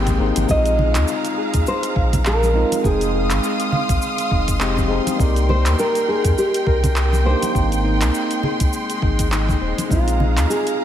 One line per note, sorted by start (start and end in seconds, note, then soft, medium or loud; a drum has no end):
0.00 0.19 G#1 medium
0.00 5.16 G#3 medium
0.00 0.18 A#3 medium
0.00 0.19 C4 medium
0.00 0.20 D#4 medium
0.00 0.18 G4 medium
0.00 0.45 G5 medium
0.00 0.50 G5 medium
0.00 1.16 G5 medium
0.00 0.45 C6 medium
0.07 kick medium
0.07 closed hi-hat soft
0.07 high conga medium
0.07 shaker soft
0.18 0.32 G#1 medium
0.18 0.45 A#3 medium
0.18 0.46 C4 medium
0.18 0.78 D#4 medium
0.18 0.46 D#4 medium
0.18 0.47 G#4 medium
0.36 0.46 G#1 medium
0.36 closed hi-hat medium
0.36 high conga medium
0.36 shaker medium
0.45 0.97 A#1 loud
0.45 2.50 G#3 medium
0.45 2.51 C4 medium
0.45 kick loud
0.45 shaker medium
0.49 2.52 D#4 medium
0.49 2.54 F4 medium
0.49 1.68 D#5 loud
0.49 2.82 F5 medium
0.49 2.82 A#5 medium
0.66 closed hi-hat soft
0.66 shaker soft
0.79 2.54 D#4 medium
0.79 low conga medium
0.95 1.05 D#2 loud
0.95 clap medium
0.95 closed hi-hat medium
0.95 shaker medium
1.08 shaker medium
1.25 closed hi-hat soft
1.25 shaker soft
1.38 3.13 G#4 medium
1.54 1.63 D#2 medium
1.54 kick loud
1.54 closed hi-hat medium
1.54 shaker medium
1.67 2.27 C5 loud
1.67 shaker soft
1.83 closed hi-hat soft
1.83 shaker soft
1.96 2.64 A#1 medium
1.96 3.63 F5 medium
1.96 kick loud
2.13 kick medium
2.13 closed hi-hat medium
2.13 low conga medium
2.13 shaker medium
2.25 2.87 A#4 medium
2.25 clap medium
2.25 shaker medium
2.43 high conga medium
2.43 shaker soft
2.53 2.73 G#3 medium
2.53 2.73 C4 medium
2.53 4.31 D#4 medium
2.53 2.74 D#4 medium
2.53 2.74 F4 medium
2.72 closed hi-hat medium
2.72 high conga medium
2.72 shaker medium
2.81 3.32 F1 loud
2.81 4.56 G#3 medium
2.81 4.57 C4 medium
2.81 5.17 F5 medium
2.81 7.51 C6 medium
2.81 kick loud
2.81 shaker medium
2.85 4.58 D#4 medium
2.85 3.99 G#4 medium
2.85 4.59 G5 medium
2.85 5.18 D#6 medium
3.01 closed hi-hat soft
3.01 shaker soft
3.14 4.90 G#4 medium
3.30 3.40 G#1 medium
3.30 clap medium
3.30 closed hi-hat medium
3.30 shaker medium
3.44 shaker medium
3.60 closed hi-hat soft
3.60 shaker soft
3.72 5.39 F5 medium
3.72 low conga medium
3.89 3.98 A#1 medium
3.89 kick loud
3.89 closed hi-hat medium
3.89 shaker medium
4.02 shaker medium
4.18 closed hi-hat soft
4.18 shaker soft
4.31 5.00 F1 medium
4.31 6.08 D#4 medium
4.31 kick loud
4.48 kick medium
4.48 closed hi-hat medium
4.48 shaker medium
4.59 4.86 G#3 medium
4.59 4.87 C4 medium
4.59 4.88 D#4 medium
4.59 4.88 G4 medium
4.59 clap medium
4.59 shaker medium
4.77 kick medium
4.77 high conga medium
4.77 shaker soft
4.88 5.16 G#3 medium
4.88 5.16 C4 medium
4.88 5.17 D#4 medium
4.88 5.55 G#4 medium
4.88 5.17 G#4 medium
5.07 closed hi-hat medium
5.07 high conga medium
5.07 shaker medium
5.16 5.67 C2 loud
5.16 7.21 A#3 medium
5.16 7.53 A#4 medium
5.16 7.22 D5 medium
5.16 kick loud
5.20 7.23 D#4 medium
5.20 7.24 G4 medium
5.20 9.87 G5 medium
5.20 shaker medium
5.36 closed hi-hat soft
5.36 shaker soft
5.49 5.79 C5 loud
5.49 7.04 G5 medium
5.49 low conga medium
5.66 5.75 D#2 medium
5.66 clap medium
5.66 closed hi-hat medium
5.66 shaker medium
5.79 6.09 A#4 loud
5.79 shaker medium
5.95 closed hi-hat soft
5.95 shaker soft
6.08 7.84 D#4 medium
6.08 6.38 G#4 medium
6.25 6.34 F2 medium
6.25 kick loud
6.25 closed hi-hat medium
6.25 shaker medium
6.38 7.29 G4 medium
6.38 shaker medium
6.54 closed hi-hat soft
6.54 shaker soft
6.67 7.35 C2 medium
6.67 8.79 A#4 medium
6.67 kick loud
6.83 kick medium
6.83 closed hi-hat medium
6.83 low conga medium
6.83 shaker medium
6.96 clap medium
6.96 shaker medium
7.13 high conga medium
7.13 shaker soft
7.24 7.44 A#3 medium
7.24 7.44 D4 medium
7.24 7.45 D#4 medium
7.24 7.45 G4 medium
7.24 8.98 C5 loud
7.24 8.50 G5 medium
7.42 closed hi-hat medium
7.42 high conga medium
7.42 shaker medium
7.52 8.03 G#1 loud
7.52 9.27 A#3 medium
7.52 9.28 C4 medium
7.52 9.88 C6 medium
7.52 kick loud
7.56 10.84 G#3 medium
7.56 9.29 D#4 medium
7.56 9.30 G5 medium
7.56 shaker medium
7.72 closed hi-hat soft
7.72 shaker soft
7.84 9.02 D#4 medium
8.01 8.11 C2 loud
8.01 clap medium
8.01 closed hi-hat medium
8.01 shaker medium
8.14 shaker medium
8.31 closed hi-hat soft
8.31 shaker soft
8.43 10.71 G#4 medium
8.43 low conga medium
8.60 8.69 C2 medium
8.60 kick loud
8.60 closed hi-hat medium
8.60 shaker medium
8.73 shaker medium
8.90 closed hi-hat soft
8.90 shaker soft
9.02 9.55 G#1 medium
9.02 9.31 D#4 medium
9.02 kick loud
9.19 kick medium
9.19 closed hi-hat medium
9.19 shaker medium
9.32 10.20 D#4 medium
9.32 clap medium
9.32 shaker medium
9.49 kick medium
9.49 high conga medium
9.49 shaker soft
9.61 9.73 D#1 loud
9.61 10.84 C5 medium
9.78 closed hi-hat medium
9.78 high conga medium
9.78 shaker medium
9.87 10.38 A#1 loud
9.87 10.84 G#3 medium
9.87 10.84 C4 medium
9.87 10.84 F5 medium
9.87 10.84 A#5 medium
9.87 kick loud
9.91 10.84 D#4 medium
9.91 10.50 F4 medium
9.91 10.84 F4 medium
9.91 shaker medium
10.08 closed hi-hat soft
10.08 shaker soft
10.20 10.84 D#4 medium
10.20 low conga medium
10.37 10.46 D#2 medium
10.37 clap medium
10.37 closed hi-hat medium
10.37 shaker medium
10.50 10.84 G#4 medium
10.50 shaker medium
10.67 closed hi-hat soft
10.67 shaker soft
10.79 10.84 G#4 medium